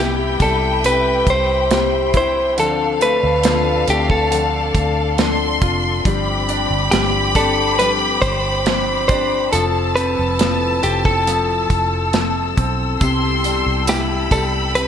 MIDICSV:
0, 0, Header, 1, 8, 480
1, 0, Start_track
1, 0, Key_signature, 0, "major"
1, 0, Tempo, 869565
1, 1422, Time_signature, 4, 2, 24, 8
1, 8212, End_track
2, 0, Start_track
2, 0, Title_t, "Violin section"
2, 0, Program_c, 0, 48
2, 0, Note_on_c, 0, 79, 89
2, 1402, Note_off_c, 0, 79, 0
2, 1424, Note_on_c, 0, 77, 95
2, 2858, Note_on_c, 0, 84, 98
2, 2863, Note_off_c, 0, 77, 0
2, 3340, Note_off_c, 0, 84, 0
2, 3341, Note_on_c, 0, 83, 109
2, 5262, Note_off_c, 0, 83, 0
2, 5265, Note_on_c, 0, 81, 94
2, 6944, Note_off_c, 0, 81, 0
2, 7176, Note_on_c, 0, 84, 102
2, 7637, Note_off_c, 0, 84, 0
2, 7653, Note_on_c, 0, 83, 102
2, 8212, Note_off_c, 0, 83, 0
2, 8212, End_track
3, 0, Start_track
3, 0, Title_t, "String section"
3, 0, Program_c, 1, 48
3, 0, Note_on_c, 1, 67, 66
3, 0, Note_on_c, 1, 76, 65
3, 0, Note_on_c, 1, 83, 76
3, 1402, Note_off_c, 1, 67, 0
3, 1402, Note_off_c, 1, 76, 0
3, 1403, Note_off_c, 1, 83, 0
3, 1419, Note_on_c, 1, 74, 66
3, 1420, Note_on_c, 1, 69, 70
3, 1420, Note_on_c, 1, 81, 80
3, 3321, Note_off_c, 1, 74, 0
3, 3322, Note_off_c, 1, 69, 0
3, 3322, Note_off_c, 1, 81, 0
3, 3340, Note_on_c, 1, 79, 71
3, 3340, Note_on_c, 1, 86, 80
3, 3341, Note_on_c, 1, 60, 73
3, 5242, Note_off_c, 1, 60, 0
3, 5242, Note_off_c, 1, 79, 0
3, 5242, Note_off_c, 1, 86, 0
3, 5261, Note_on_c, 1, 69, 73
3, 5261, Note_on_c, 1, 81, 65
3, 5263, Note_on_c, 1, 88, 78
3, 7162, Note_off_c, 1, 81, 0
3, 7180, Note_on_c, 1, 79, 62
3, 8212, Note_off_c, 1, 69, 0
3, 8212, Note_off_c, 1, 79, 0
3, 8212, Note_off_c, 1, 88, 0
3, 8212, End_track
4, 0, Start_track
4, 0, Title_t, "Clean electric guitar"
4, 0, Program_c, 2, 27
4, 0, Note_on_c, 2, 67, 86
4, 233, Note_on_c, 2, 69, 81
4, 237, Note_off_c, 2, 67, 0
4, 472, Note_off_c, 2, 69, 0
4, 474, Note_on_c, 2, 71, 95
4, 715, Note_off_c, 2, 71, 0
4, 718, Note_on_c, 2, 72, 101
4, 1192, Note_off_c, 2, 72, 0
4, 1199, Note_on_c, 2, 72, 88
4, 1431, Note_off_c, 2, 72, 0
4, 1433, Note_on_c, 2, 69, 92
4, 1667, Note_off_c, 2, 69, 0
4, 1669, Note_on_c, 2, 71, 97
4, 2151, Note_off_c, 2, 71, 0
4, 2153, Note_on_c, 2, 67, 78
4, 2266, Note_off_c, 2, 67, 0
4, 2268, Note_on_c, 2, 69, 75
4, 3083, Note_off_c, 2, 69, 0
4, 3817, Note_on_c, 2, 67, 83
4, 4061, Note_off_c, 2, 67, 0
4, 4063, Note_on_c, 2, 69, 88
4, 4297, Note_off_c, 2, 69, 0
4, 4299, Note_on_c, 2, 71, 100
4, 4364, Note_off_c, 2, 71, 0
4, 4535, Note_on_c, 2, 72, 100
4, 5006, Note_off_c, 2, 72, 0
4, 5013, Note_on_c, 2, 72, 85
4, 5256, Note_off_c, 2, 72, 0
4, 5258, Note_on_c, 2, 69, 97
4, 5323, Note_off_c, 2, 69, 0
4, 5495, Note_on_c, 2, 71, 91
4, 5979, Note_off_c, 2, 71, 0
4, 5981, Note_on_c, 2, 67, 75
4, 6100, Note_off_c, 2, 67, 0
4, 6102, Note_on_c, 2, 69, 79
4, 6920, Note_off_c, 2, 69, 0
4, 7669, Note_on_c, 2, 67, 91
4, 7733, Note_off_c, 2, 67, 0
4, 7906, Note_on_c, 2, 69, 81
4, 7970, Note_off_c, 2, 69, 0
4, 8144, Note_on_c, 2, 71, 97
4, 8212, Note_off_c, 2, 71, 0
4, 8212, End_track
5, 0, Start_track
5, 0, Title_t, "Steel-string acoustic guitar"
5, 0, Program_c, 3, 25
5, 0, Note_on_c, 3, 48, 67
5, 0, Note_on_c, 3, 55, 72
5, 0, Note_on_c, 3, 59, 79
5, 0, Note_on_c, 3, 64, 72
5, 0, Note_on_c, 3, 67, 78
5, 208, Note_off_c, 3, 67, 0
5, 215, Note_on_c, 3, 67, 53
5, 219, Note_off_c, 3, 64, 0
5, 220, Note_off_c, 3, 48, 0
5, 221, Note_off_c, 3, 55, 0
5, 222, Note_off_c, 3, 59, 0
5, 226, Note_on_c, 3, 64, 51
5, 231, Note_on_c, 3, 59, 46
5, 456, Note_on_c, 3, 55, 57
5, 458, Note_off_c, 3, 67, 0
5, 459, Note_off_c, 3, 64, 0
5, 465, Note_on_c, 3, 64, 56
5, 466, Note_off_c, 3, 59, 0
5, 471, Note_on_c, 3, 67, 61
5, 936, Note_off_c, 3, 55, 0
5, 939, Note_on_c, 3, 48, 69
5, 941, Note_off_c, 3, 64, 0
5, 942, Note_off_c, 3, 67, 0
5, 943, Note_on_c, 3, 55, 74
5, 947, Note_on_c, 3, 64, 70
5, 949, Note_on_c, 3, 67, 81
5, 1167, Note_off_c, 3, 67, 0
5, 1174, Note_on_c, 3, 67, 53
5, 1176, Note_off_c, 3, 64, 0
5, 1180, Note_off_c, 3, 48, 0
5, 1182, Note_off_c, 3, 55, 0
5, 1183, Note_on_c, 3, 64, 42
5, 1416, Note_on_c, 3, 50, 70
5, 1418, Note_off_c, 3, 67, 0
5, 1419, Note_on_c, 3, 53, 80
5, 1422, Note_off_c, 3, 64, 0
5, 1423, Note_on_c, 3, 60, 81
5, 1426, Note_on_c, 3, 62, 79
5, 1428, Note_on_c, 3, 69, 80
5, 1895, Note_off_c, 3, 50, 0
5, 1897, Note_on_c, 3, 50, 72
5, 1900, Note_off_c, 3, 53, 0
5, 1902, Note_on_c, 3, 53, 67
5, 1903, Note_off_c, 3, 60, 0
5, 1903, Note_off_c, 3, 69, 0
5, 1905, Note_off_c, 3, 62, 0
5, 1905, Note_on_c, 3, 60, 77
5, 1907, Note_on_c, 3, 62, 74
5, 1909, Note_on_c, 3, 69, 80
5, 2132, Note_off_c, 3, 69, 0
5, 2138, Note_on_c, 3, 69, 54
5, 2139, Note_off_c, 3, 50, 0
5, 2140, Note_off_c, 3, 62, 0
5, 2142, Note_off_c, 3, 53, 0
5, 2143, Note_off_c, 3, 60, 0
5, 2147, Note_on_c, 3, 62, 52
5, 2154, Note_on_c, 3, 60, 45
5, 2374, Note_off_c, 3, 60, 0
5, 2376, Note_on_c, 3, 53, 58
5, 2380, Note_off_c, 3, 69, 0
5, 2381, Note_off_c, 3, 62, 0
5, 2381, Note_on_c, 3, 60, 62
5, 2388, Note_on_c, 3, 62, 59
5, 2391, Note_on_c, 3, 69, 70
5, 2857, Note_on_c, 3, 50, 86
5, 2859, Note_off_c, 3, 53, 0
5, 2861, Note_off_c, 3, 60, 0
5, 2861, Note_on_c, 3, 53, 78
5, 2863, Note_off_c, 3, 69, 0
5, 2863, Note_on_c, 3, 60, 85
5, 2864, Note_off_c, 3, 62, 0
5, 2866, Note_on_c, 3, 62, 88
5, 2869, Note_on_c, 3, 69, 85
5, 3087, Note_off_c, 3, 69, 0
5, 3094, Note_on_c, 3, 69, 59
5, 3096, Note_off_c, 3, 62, 0
5, 3100, Note_off_c, 3, 50, 0
5, 3101, Note_off_c, 3, 53, 0
5, 3101, Note_off_c, 3, 60, 0
5, 3102, Note_on_c, 3, 62, 50
5, 3108, Note_on_c, 3, 60, 46
5, 3337, Note_off_c, 3, 60, 0
5, 3338, Note_off_c, 3, 69, 0
5, 3338, Note_on_c, 3, 43, 90
5, 3339, Note_off_c, 3, 62, 0
5, 3339, Note_on_c, 3, 50, 97
5, 3343, Note_on_c, 3, 53, 86
5, 3344, Note_on_c, 3, 60, 86
5, 3346, Note_on_c, 3, 62, 94
5, 3347, Note_on_c, 3, 67, 86
5, 3811, Note_off_c, 3, 43, 0
5, 3814, Note_off_c, 3, 50, 0
5, 3818, Note_on_c, 3, 43, 71
5, 3820, Note_off_c, 3, 62, 0
5, 3820, Note_off_c, 3, 67, 0
5, 3820, Note_on_c, 3, 50, 79
5, 3821, Note_off_c, 3, 53, 0
5, 3823, Note_off_c, 3, 60, 0
5, 3823, Note_on_c, 3, 53, 77
5, 3825, Note_on_c, 3, 60, 78
5, 3827, Note_on_c, 3, 62, 80
5, 3827, Note_on_c, 3, 67, 76
5, 4052, Note_off_c, 3, 67, 0
5, 4057, Note_off_c, 3, 62, 0
5, 4059, Note_on_c, 3, 67, 58
5, 4060, Note_off_c, 3, 43, 0
5, 4061, Note_off_c, 3, 50, 0
5, 4062, Note_off_c, 3, 53, 0
5, 4062, Note_off_c, 3, 60, 0
5, 4063, Note_on_c, 3, 62, 54
5, 4069, Note_on_c, 3, 60, 46
5, 4073, Note_on_c, 3, 53, 45
5, 4290, Note_off_c, 3, 53, 0
5, 4296, Note_off_c, 3, 60, 0
5, 4297, Note_on_c, 3, 53, 60
5, 4300, Note_off_c, 3, 62, 0
5, 4300, Note_off_c, 3, 67, 0
5, 4302, Note_on_c, 3, 60, 59
5, 4307, Note_on_c, 3, 62, 62
5, 4312, Note_on_c, 3, 67, 58
5, 4776, Note_on_c, 3, 43, 71
5, 4777, Note_off_c, 3, 62, 0
5, 4778, Note_off_c, 3, 53, 0
5, 4778, Note_off_c, 3, 67, 0
5, 4778, Note_on_c, 3, 50, 75
5, 4780, Note_off_c, 3, 60, 0
5, 4781, Note_on_c, 3, 53, 70
5, 4782, Note_on_c, 3, 60, 79
5, 4784, Note_on_c, 3, 62, 73
5, 4785, Note_on_c, 3, 67, 75
5, 5005, Note_off_c, 3, 67, 0
5, 5012, Note_on_c, 3, 67, 52
5, 5014, Note_off_c, 3, 62, 0
5, 5017, Note_off_c, 3, 60, 0
5, 5019, Note_off_c, 3, 43, 0
5, 5020, Note_off_c, 3, 50, 0
5, 5021, Note_off_c, 3, 53, 0
5, 5021, Note_on_c, 3, 62, 50
5, 5024, Note_on_c, 3, 60, 45
5, 5029, Note_on_c, 3, 53, 37
5, 5245, Note_off_c, 3, 53, 0
5, 5250, Note_off_c, 3, 60, 0
5, 5252, Note_on_c, 3, 53, 68
5, 5257, Note_off_c, 3, 67, 0
5, 5257, Note_on_c, 3, 60, 75
5, 5259, Note_off_c, 3, 62, 0
5, 5261, Note_on_c, 3, 64, 82
5, 5264, Note_on_c, 3, 69, 83
5, 5727, Note_off_c, 3, 53, 0
5, 5734, Note_on_c, 3, 53, 67
5, 5737, Note_off_c, 3, 60, 0
5, 5738, Note_off_c, 3, 69, 0
5, 5739, Note_on_c, 3, 60, 71
5, 5740, Note_off_c, 3, 64, 0
5, 5742, Note_on_c, 3, 64, 73
5, 5745, Note_on_c, 3, 69, 77
5, 5970, Note_off_c, 3, 69, 0
5, 5977, Note_on_c, 3, 69, 54
5, 5978, Note_off_c, 3, 53, 0
5, 5978, Note_off_c, 3, 64, 0
5, 5981, Note_off_c, 3, 60, 0
5, 5984, Note_on_c, 3, 64, 48
5, 5991, Note_on_c, 3, 60, 44
5, 6214, Note_off_c, 3, 60, 0
5, 6214, Note_on_c, 3, 53, 51
5, 6217, Note_off_c, 3, 64, 0
5, 6219, Note_off_c, 3, 69, 0
5, 6221, Note_on_c, 3, 60, 52
5, 6223, Note_on_c, 3, 64, 59
5, 6231, Note_on_c, 3, 69, 62
5, 6690, Note_off_c, 3, 53, 0
5, 6696, Note_on_c, 3, 53, 77
5, 6701, Note_off_c, 3, 60, 0
5, 6701, Note_off_c, 3, 64, 0
5, 6702, Note_off_c, 3, 69, 0
5, 6703, Note_on_c, 3, 60, 78
5, 6703, Note_on_c, 3, 64, 82
5, 6708, Note_on_c, 3, 69, 85
5, 6928, Note_off_c, 3, 69, 0
5, 6935, Note_on_c, 3, 69, 57
5, 6937, Note_off_c, 3, 64, 0
5, 6939, Note_off_c, 3, 53, 0
5, 6942, Note_off_c, 3, 60, 0
5, 6943, Note_on_c, 3, 64, 52
5, 6951, Note_on_c, 3, 60, 43
5, 7178, Note_off_c, 3, 69, 0
5, 7180, Note_on_c, 3, 48, 84
5, 7183, Note_off_c, 3, 64, 0
5, 7184, Note_on_c, 3, 55, 81
5, 7185, Note_off_c, 3, 60, 0
5, 7187, Note_on_c, 3, 59, 94
5, 7189, Note_on_c, 3, 64, 81
5, 7189, Note_on_c, 3, 67, 90
5, 7652, Note_off_c, 3, 48, 0
5, 7655, Note_off_c, 3, 55, 0
5, 7657, Note_off_c, 3, 59, 0
5, 7658, Note_on_c, 3, 48, 69
5, 7662, Note_off_c, 3, 64, 0
5, 7662, Note_on_c, 3, 55, 71
5, 7664, Note_off_c, 3, 67, 0
5, 7664, Note_on_c, 3, 59, 73
5, 7669, Note_on_c, 3, 64, 77
5, 7671, Note_on_c, 3, 67, 76
5, 7889, Note_off_c, 3, 67, 0
5, 7896, Note_on_c, 3, 67, 54
5, 7899, Note_off_c, 3, 64, 0
5, 7900, Note_off_c, 3, 48, 0
5, 7902, Note_off_c, 3, 55, 0
5, 7903, Note_off_c, 3, 59, 0
5, 7906, Note_on_c, 3, 64, 48
5, 7911, Note_on_c, 3, 59, 44
5, 8136, Note_on_c, 3, 55, 55
5, 8139, Note_off_c, 3, 67, 0
5, 8140, Note_off_c, 3, 64, 0
5, 8146, Note_off_c, 3, 59, 0
5, 8147, Note_on_c, 3, 64, 61
5, 8151, Note_on_c, 3, 67, 61
5, 8212, Note_off_c, 3, 55, 0
5, 8212, Note_off_c, 3, 64, 0
5, 8212, Note_off_c, 3, 67, 0
5, 8212, End_track
6, 0, Start_track
6, 0, Title_t, "Upright piano"
6, 0, Program_c, 4, 0
6, 0, Control_c, 4, 64, 127
6, 0, Note_on_c, 4, 48, 64
6, 0, Note_on_c, 4, 55, 48
6, 0, Note_on_c, 4, 64, 52
6, 220, Note_off_c, 4, 55, 0
6, 229, Note_on_c, 4, 55, 54
6, 454, Note_off_c, 4, 48, 0
6, 463, Note_on_c, 4, 48, 56
6, 920, Note_off_c, 4, 64, 0
6, 1163, Note_off_c, 4, 55, 0
6, 1183, Note_on_c, 4, 64, 53
6, 1400, Note_off_c, 4, 48, 0
6, 1415, Note_off_c, 4, 64, 0
6, 1423, Note_on_c, 4, 50, 63
6, 1429, Control_c, 4, 64, 0
6, 1513, Control_c, 4, 64, 127
6, 1660, Note_on_c, 4, 57, 52
6, 1903, Note_on_c, 4, 65, 57
6, 2133, Note_off_c, 4, 57, 0
6, 2142, Note_on_c, 4, 57, 54
6, 2369, Note_off_c, 4, 50, 0
6, 2377, Note_on_c, 4, 50, 56
6, 2840, Note_off_c, 4, 65, 0
6, 3080, Note_off_c, 4, 57, 0
6, 3102, Note_on_c, 4, 65, 58
6, 3318, Note_off_c, 4, 50, 0
6, 3335, Note_off_c, 4, 65, 0
6, 3340, Note_on_c, 4, 55, 65
6, 3349, Control_c, 4, 64, 0
6, 3456, Control_c, 4, 64, 127
6, 3580, Note_on_c, 4, 62, 54
6, 3809, Note_off_c, 4, 55, 0
6, 3817, Note_on_c, 4, 55, 52
6, 4051, Note_off_c, 4, 62, 0
6, 4059, Note_on_c, 4, 62, 58
6, 4292, Note_off_c, 4, 55, 0
6, 4301, Note_on_c, 4, 55, 58
6, 4998, Note_off_c, 4, 62, 0
6, 5023, Note_on_c, 4, 62, 55
6, 5239, Note_off_c, 4, 55, 0
6, 5255, Note_off_c, 4, 62, 0
6, 5265, Note_on_c, 4, 53, 67
6, 5270, Control_c, 4, 64, 0
6, 5358, Control_c, 4, 64, 127
6, 5499, Note_on_c, 4, 60, 54
6, 5731, Note_off_c, 4, 53, 0
6, 5739, Note_on_c, 4, 53, 55
6, 5969, Note_off_c, 4, 60, 0
6, 5977, Note_on_c, 4, 60, 55
6, 6213, Note_off_c, 4, 53, 0
6, 6221, Note_on_c, 4, 53, 56
6, 6917, Note_off_c, 4, 60, 0
6, 6942, Note_on_c, 4, 60, 50
6, 7160, Note_off_c, 4, 53, 0
6, 7175, Note_off_c, 4, 60, 0
6, 7178, Note_on_c, 4, 48, 61
6, 7190, Control_c, 4, 64, 0
6, 7276, Control_c, 4, 64, 127
6, 7421, Note_on_c, 4, 55, 51
6, 7665, Note_on_c, 4, 64, 52
6, 7892, Note_off_c, 4, 55, 0
6, 7901, Note_on_c, 4, 55, 60
6, 8137, Note_off_c, 4, 48, 0
6, 8146, Note_on_c, 4, 48, 58
6, 8212, Note_off_c, 4, 48, 0
6, 8212, Note_off_c, 4, 55, 0
6, 8212, Note_off_c, 4, 64, 0
6, 8212, End_track
7, 0, Start_track
7, 0, Title_t, "Fingered electric bass"
7, 0, Program_c, 5, 33
7, 0, Note_on_c, 5, 36, 91
7, 201, Note_off_c, 5, 36, 0
7, 221, Note_on_c, 5, 36, 90
7, 679, Note_off_c, 5, 36, 0
7, 700, Note_on_c, 5, 36, 90
7, 1423, Note_off_c, 5, 36, 0
7, 1423, Note_on_c, 5, 38, 94
7, 1760, Note_off_c, 5, 38, 0
7, 1785, Note_on_c, 5, 38, 86
7, 2122, Note_off_c, 5, 38, 0
7, 2142, Note_on_c, 5, 38, 94
7, 2600, Note_off_c, 5, 38, 0
7, 2619, Note_on_c, 5, 38, 87
7, 3078, Note_off_c, 5, 38, 0
7, 3101, Note_on_c, 5, 29, 93
7, 3324, Note_off_c, 5, 29, 0
7, 3341, Note_on_c, 5, 31, 91
7, 3679, Note_off_c, 5, 31, 0
7, 3701, Note_on_c, 5, 31, 88
7, 3813, Note_off_c, 5, 31, 0
7, 3820, Note_on_c, 5, 31, 100
7, 4519, Note_off_c, 5, 31, 0
7, 4537, Note_on_c, 5, 31, 86
7, 5237, Note_off_c, 5, 31, 0
7, 5263, Note_on_c, 5, 29, 103
7, 5600, Note_off_c, 5, 29, 0
7, 5625, Note_on_c, 5, 29, 82
7, 5961, Note_off_c, 5, 29, 0
7, 5983, Note_on_c, 5, 29, 91
7, 6440, Note_off_c, 5, 29, 0
7, 6459, Note_on_c, 5, 29, 88
7, 6918, Note_off_c, 5, 29, 0
7, 6941, Note_on_c, 5, 35, 91
7, 7165, Note_off_c, 5, 35, 0
7, 7181, Note_on_c, 5, 36, 93
7, 7519, Note_off_c, 5, 36, 0
7, 7542, Note_on_c, 5, 36, 92
7, 7880, Note_off_c, 5, 36, 0
7, 7902, Note_on_c, 5, 36, 94
7, 8212, Note_off_c, 5, 36, 0
7, 8212, End_track
8, 0, Start_track
8, 0, Title_t, "Drums"
8, 221, Note_on_c, 9, 36, 82
8, 222, Note_on_c, 9, 42, 75
8, 276, Note_off_c, 9, 36, 0
8, 277, Note_off_c, 9, 42, 0
8, 466, Note_on_c, 9, 42, 87
8, 521, Note_off_c, 9, 42, 0
8, 699, Note_on_c, 9, 36, 86
8, 700, Note_on_c, 9, 42, 69
8, 755, Note_off_c, 9, 36, 0
8, 755, Note_off_c, 9, 42, 0
8, 942, Note_on_c, 9, 42, 82
8, 946, Note_on_c, 9, 38, 109
8, 997, Note_off_c, 9, 42, 0
8, 1001, Note_off_c, 9, 38, 0
8, 1180, Note_on_c, 9, 42, 65
8, 1181, Note_on_c, 9, 36, 89
8, 1235, Note_off_c, 9, 42, 0
8, 1236, Note_off_c, 9, 36, 0
8, 1423, Note_on_c, 9, 42, 83
8, 1478, Note_off_c, 9, 42, 0
8, 1662, Note_on_c, 9, 42, 68
8, 1717, Note_off_c, 9, 42, 0
8, 1896, Note_on_c, 9, 42, 100
8, 1905, Note_on_c, 9, 38, 109
8, 1951, Note_off_c, 9, 42, 0
8, 1960, Note_off_c, 9, 38, 0
8, 2140, Note_on_c, 9, 42, 80
8, 2195, Note_off_c, 9, 42, 0
8, 2262, Note_on_c, 9, 36, 78
8, 2317, Note_off_c, 9, 36, 0
8, 2384, Note_on_c, 9, 42, 88
8, 2439, Note_off_c, 9, 42, 0
8, 2620, Note_on_c, 9, 36, 82
8, 2622, Note_on_c, 9, 42, 71
8, 2675, Note_off_c, 9, 36, 0
8, 2677, Note_off_c, 9, 42, 0
8, 2861, Note_on_c, 9, 42, 86
8, 2864, Note_on_c, 9, 38, 108
8, 2916, Note_off_c, 9, 42, 0
8, 2920, Note_off_c, 9, 38, 0
8, 3100, Note_on_c, 9, 36, 96
8, 3100, Note_on_c, 9, 42, 65
8, 3156, Note_off_c, 9, 36, 0
8, 3156, Note_off_c, 9, 42, 0
8, 3341, Note_on_c, 9, 36, 110
8, 3342, Note_on_c, 9, 42, 85
8, 3396, Note_off_c, 9, 36, 0
8, 3397, Note_off_c, 9, 42, 0
8, 3581, Note_on_c, 9, 42, 69
8, 3637, Note_off_c, 9, 42, 0
8, 3819, Note_on_c, 9, 42, 100
8, 3828, Note_on_c, 9, 38, 116
8, 3874, Note_off_c, 9, 42, 0
8, 3883, Note_off_c, 9, 38, 0
8, 4058, Note_on_c, 9, 36, 84
8, 4058, Note_on_c, 9, 42, 81
8, 4113, Note_off_c, 9, 42, 0
8, 4114, Note_off_c, 9, 36, 0
8, 4303, Note_on_c, 9, 42, 83
8, 4358, Note_off_c, 9, 42, 0
8, 4538, Note_on_c, 9, 36, 83
8, 4539, Note_on_c, 9, 42, 75
8, 4593, Note_off_c, 9, 36, 0
8, 4594, Note_off_c, 9, 42, 0
8, 4780, Note_on_c, 9, 42, 88
8, 4784, Note_on_c, 9, 38, 112
8, 4836, Note_off_c, 9, 42, 0
8, 4839, Note_off_c, 9, 38, 0
8, 5017, Note_on_c, 9, 42, 67
8, 5019, Note_on_c, 9, 36, 95
8, 5072, Note_off_c, 9, 42, 0
8, 5074, Note_off_c, 9, 36, 0
8, 5259, Note_on_c, 9, 42, 88
8, 5314, Note_off_c, 9, 42, 0
8, 5502, Note_on_c, 9, 42, 71
8, 5557, Note_off_c, 9, 42, 0
8, 5737, Note_on_c, 9, 42, 100
8, 5746, Note_on_c, 9, 38, 109
8, 5792, Note_off_c, 9, 42, 0
8, 5801, Note_off_c, 9, 38, 0
8, 5979, Note_on_c, 9, 42, 78
8, 6034, Note_off_c, 9, 42, 0
8, 6100, Note_on_c, 9, 36, 79
8, 6156, Note_off_c, 9, 36, 0
8, 6223, Note_on_c, 9, 42, 86
8, 6279, Note_off_c, 9, 42, 0
8, 6459, Note_on_c, 9, 36, 83
8, 6460, Note_on_c, 9, 42, 72
8, 6514, Note_off_c, 9, 36, 0
8, 6515, Note_off_c, 9, 42, 0
8, 6697, Note_on_c, 9, 42, 85
8, 6701, Note_on_c, 9, 38, 101
8, 6752, Note_off_c, 9, 42, 0
8, 6756, Note_off_c, 9, 38, 0
8, 6942, Note_on_c, 9, 36, 90
8, 6942, Note_on_c, 9, 42, 68
8, 6997, Note_off_c, 9, 36, 0
8, 6997, Note_off_c, 9, 42, 0
8, 7181, Note_on_c, 9, 42, 89
8, 7182, Note_on_c, 9, 36, 113
8, 7187, Note_on_c, 9, 54, 48
8, 7236, Note_off_c, 9, 42, 0
8, 7237, Note_off_c, 9, 36, 0
8, 7242, Note_off_c, 9, 54, 0
8, 7420, Note_on_c, 9, 42, 69
8, 7426, Note_on_c, 9, 54, 31
8, 7475, Note_off_c, 9, 42, 0
8, 7481, Note_off_c, 9, 54, 0
8, 7659, Note_on_c, 9, 42, 104
8, 7660, Note_on_c, 9, 54, 71
8, 7668, Note_on_c, 9, 38, 113
8, 7714, Note_off_c, 9, 42, 0
8, 7715, Note_off_c, 9, 54, 0
8, 7723, Note_off_c, 9, 38, 0
8, 7900, Note_on_c, 9, 36, 85
8, 7902, Note_on_c, 9, 42, 81
8, 7902, Note_on_c, 9, 54, 45
8, 7956, Note_off_c, 9, 36, 0
8, 7957, Note_off_c, 9, 42, 0
8, 7958, Note_off_c, 9, 54, 0
8, 8144, Note_on_c, 9, 42, 85
8, 8200, Note_off_c, 9, 42, 0
8, 8212, End_track
0, 0, End_of_file